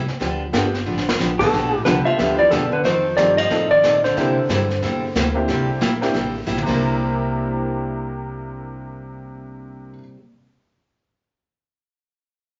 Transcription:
0.08 muted upright bass stroke, snare
0.20 D2 D3 F3 B3 D4 G4, brush sweep, snare
0.53 G1 D3 F3 A3 B3 D4 F4 G4, snare, hi-hat pedal
0.74 snare
0.86 A1 D3 F3 B3 D4 G4
0.98 snare
1.09 snare
1.19 A#1 D3 F3 B3 D4 G4, snare, hi-hat pedal
1.39 B2 A3 B3 D4 F4 A4, kick, crash
1.52 B1 D3 F3 B3 D4 G4, brush sweep, snare
1.85 C2 D3 F3 A3 B3 D4 F4 G4 B4, snare, hi-hat pedal
2.05 F3 E5, muted upright bass stroke
2.17 D2 D3 F3 A3 B3 D4 F4 G4, brush sweep, snare
2.39 E3 D5
2.51 E2 B2 D3 F3 B3 D4 G4 A4, snare, hi-hat pedal
2.72 D3 B4
2.84 F2 D#3 F3 C4 D#4 A4 C5, brush sweep, snare
3.16 G2 D#3 F3 A3 C4 D#4 F4 G4 A4 D5, snare, hi-hat pedal
3.37 F3 D#5, snare
3.50 A2 F3 A3 C4 D#4 F4 A4, brush sweep, snare
3.71 D#3 D5
3.83 A#2 F3 C4 D#4 A4, snare, hi-hat pedal
4.04 D3 C5, snare
4.16 C3 G3 A#3 C4 D4 E4 G4, brush sweep, snare
4.37 muted upright bass stroke
4.49 G2 C3 G3 A#3 E4 G4, snare, hi-hat pedal
4.70 snare
4.82 E2 C3 G3 A#3 E4 G4, brush sweep, snare
5.15 D2 C3 G3 A#3 E4 G4, snare, hi-hat pedal
5.34 A#3 C4 D4 E4 G4
5.48 C2 C3 G3 A#3 E4 G4, brush sweep, snare
5.81 A#1 C3 G3 A#3 E4 G4, snare, hi-hat pedal
6.01 A#3 C4 D4 E4 G4, snare
6.13 A1 C3 G3 A#3 E4 G4, brush sweep, snare
6.47 A#1 C3 G3 A#3 E4 G4, hi-hat pedal
6.58 mid tom
6.62 C3 C4
6.67 C2 G3 A#3 D4 E4 G4, kick, crash
6.71 E4 A#4

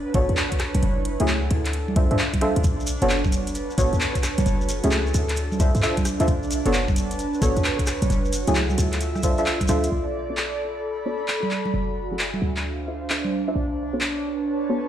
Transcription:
Already playing: D4 B4 C#5 A5
0.14 A1 B3 D4 F#4 A4 C#5, kick, closed hi-hat
0.29 E2, closed hi-hat
0.37 clap
0.52 kick, closed hi-hat
0.60 cross-stick, clap, closed hi-hat
0.75 B1, closed hi-hat, high conga
0.83 F#1 E4, closed hi-hat
1.05 closed hi-hat
1.16 A4 F#5 G#5, closed hi-hat
1.20 C#2 F#3 A3 C#4 E4 G#4
1.28 clap
1.51 D2 D4, closed hi-hat
1.65 clap, closed hi-hat
1.73 closed hi-hat
1.88 high conga
1.96 C2 D4 F4 A4 C5 E5, kick, closed hi-hat
2.03 F5
2.11 G2 D4 F4 A4 C5 E5, closed hi-hat
2.19 clap
2.34 kick, closed hi-hat, high conga
2.41 D4 F4 A4 C5 E5, cross-stick, closed hi-hat
2.56 D2, closed hi-hat
2.64 B1, kick, closed hi-hat, shekere
2.80 shekere
2.87 closed hi-hat, shekere
3.00 F#1 B3 D4 F#4 A4 B4 C#5, closed hi-hat, shekere
3.10 clap, shekere
3.24 C#5, kick, high conga, shekere
3.32 closed hi-hat, shekere
3.47 A5, closed hi-hat, shekere
3.55 closed hi-hat, shekere
3.70 shekere
3.78 A1 B3 D4 F#4 A4 C#5, kick, closed hi-hat, shekere
3.93 E2, closed hi-hat, shekere
4.01 clap, shekere
4.15 kick, closed hi-hat, shekere
4.23 cross-stick, clap, closed hi-hat, shekere
4.38 B1, closed hi-hat, high conga, shekere
4.46 F#1 F#4, closed hi-hat, shekere
4.52 A4
4.61 shekere
4.69 closed hi-hat, shekere
4.79 E5 G#5
4.84 C#2 F#3 A3 C#4 E4 G#4, closed hi-hat, shekere
4.91 clap, shekere
5.07 shekere
5.14 D2 D4, closed hi-hat, shekere
5.29 clap, closed hi-hat, shekere
5.36 closed hi-hat, shekere
5.44 C5
5.52 high conga, shekere
5.60 C2 D4 F4 A4 C5 E5 F5, kick, closed hi-hat, shekere
5.75 G2, closed hi-hat, shekere
5.82 D4 F4 A4 C5 E5, clap, shekere
5.97 kick, closed hi-hat, high conga, shekere
6.05 cross-stick, closed hi-hat, shekere
6.20 D2 D4 F4 A4 C5 E5, closed hi-hat, shekere
6.28 B1, kick, closed hi-hat, shekere
6.43 shekere
6.48 A5, closed hi-hat, shekere
6.65 F#1 B3 D4 F#4 A4 B4 C#5, closed hi-hat, shekere
6.73 clap, shekere
6.88 kick, high conga, shekere
6.96 closed hi-hat, shekere
7.07 C#5, closed hi-hat
7.12 shekere
7.19 closed hi-hat, shekere
7.34 shekere
7.42 A1 B3 D4 F#4 A4 C#5, kick, closed hi-hat, shekere
7.56 E2, closed hi-hat, shekere
7.64 clap, shekere
7.79 kick, closed hi-hat, shekere
7.86 cross-stick, clap, closed hi-hat, shekere
8.02 B1, closed hi-hat, high conga, shekere
8.10 F#1 F#4, closed hi-hat, shekere
8.25 shekere
8.33 closed hi-hat, shekere
8.43 A4 E5 G#5
8.47 C#2 F#3 A3 C#4 E4 G#4, closed hi-hat, shekere
8.55 clap, shekere
8.70 high conga, shekere
8.78 D2 F4, closed hi-hat, shekere
8.93 clap, closed hi-hat, shekere
9.01 closed hi-hat, shekere
9.12 D5, cross-stick, high conga
9.16 shekere
9.23 D4 F4 A4 C5 E5, kick, closed hi-hat, shekere
9.31 C6
9.38 D4 F4 A4 C5 E5, closed hi-hat, shekere
9.46 clap, shekere
9.61 kick, closed hi-hat, high conga, shekere
9.68 D2 D4 F4 A4 C5 E5, cross-stick, closed hi-hat, shekere
9.84 closed hi-hat, shekere
9.92 B1 A4
10.29 B3 D4 F#4 A4 C#5 B5
10.37 clap
11.06 B3 D4 F#4 A4 C#5
11.28 clap
11.43 high conga
11.51 clap
11.66 high conga
11.74 F#1 F#4
12.07 E5 G#5
12.11 F#3 A3 C#4 E4 G#4
12.19 clap
12.34 high conga
12.42 D2 D4
12.57 F5, clap
12.68 C5
12.87 D4 F4 A4 C5 E5
13.10 D4 F4 A4 C5 E5, clap
13.25 high conga
13.48 D4 F4 A4 C5 E5
13.56 B1
13.81 C#5
13.93 B3 D4 F#4 A4 B4 C#5
14.01 clap
14.15 A5
14.69 B3 D4 F#4 A4 C#5

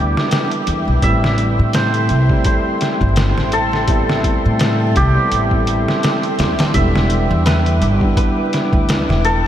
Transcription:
Already playing: D2 G3 B3 D4 E4 G4 A4 B4 E5 G5 D6
0.17 snare
0.31 snare, closed hi-hat
0.51 closed hi-hat
0.67 E2, closed hi-hat
0.88 B1
1.02 A1 G3 A3 C4 E4 A4 E5 C6, kick, closed hi-hat
1.24 snare
1.38 closed hi-hat
1.59 A2
1.73 C5, snare, closed hi-hat
1.94 closed hi-hat
2.09 C2, closed hi-hat
2.29 G3 A3 C4 E4, kick
2.44 C5, kick, closed hi-hat
2.81 snare, closed hi-hat
3.01 G1, kick
3.16 snare, closed hi-hat
3.38 A1, snare
3.52 A4, closed hi-hat
3.73 snare
3.87 G3 B3 C4 E4, kick, closed hi-hat
4.09 snare
4.24 kick, closed hi-hat
4.46 A2
4.59 snare, closed hi-hat
4.96 C2 G4, kick, closed hi-hat
5.15 G3 B3 C4 E4
5.32 A1, closed hi-hat
5.51 kick
5.67 closed hi-hat
5.88 snare
6.03 snare, closed hi-hat
6.23 closed hi-hat
6.39 E2, snare, closed hi-hat
6.59 A1, snare, closed hi-hat
6.74 E1 G3 B3 D4 E4 B4 E5 D6, kick, closed hi-hat
6.96 snare
7.10 closed hi-hat
7.31 E2
7.46 B4, snare, closed hi-hat
7.66 closed hi-hat
7.81 G1, closed hi-hat
8.01 G3 B3 D4 E4, kick
8.17 B4, kick, closed hi-hat
8.53 snare, closed hi-hat
8.73 D2, kick
8.89 snare, closed hi-hat
9.09 E1, snare
9.25 A4, closed hi-hat

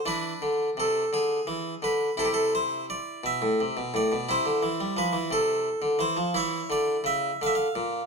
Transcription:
0.06 E3 D4 B4
0.42 D3
0.77 C3 A4
1.13 D3 G#4
1.47 E3
1.82 D3 B4
2.17 C3 E4 A4
2.25 G4
2.34 A4
2.55 C5
2.90 D5
3.24 B2 E5
3.42 A2
3.61 C3
3.77 B2
3.94 A2 D5
4.12 B2
4.29 C3 E4 C5
4.46 D3
4.63 E3
4.81 G3
4.97 F3 B4
5.13 E3
5.31 C3 A4
5.82 D3
5.99 E3 C5
6.17 F3
6.34 E3 E4 C#5
6.70 D3 D5
7.04 C#3 E5
7.42 D3 F5
7.47 E5
7.55 F5
7.75 A#2

